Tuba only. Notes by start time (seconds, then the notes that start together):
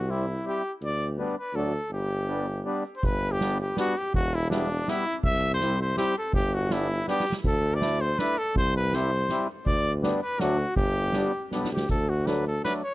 Already playing: C2
0.81 D2
1.54 D2
1.90 G1
3.03 G1
4.14 E1
5.24 C2
6.33 G1
7.44 D2
8.56 C2
9.66 D2
10.40 D2
10.76 G1
11.51 B1
11.71 D2
11.90 D2